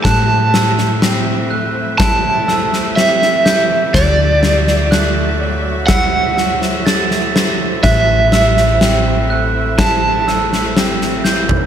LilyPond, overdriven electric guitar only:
\new Staff \with { instrumentName = "Overdriven electric guitar" } { \time 4/4 \key a \dorian \tempo 4 = 62 a''2 a''4 e''4 | d''2 fis''2 | e''2 a''4. r8 | }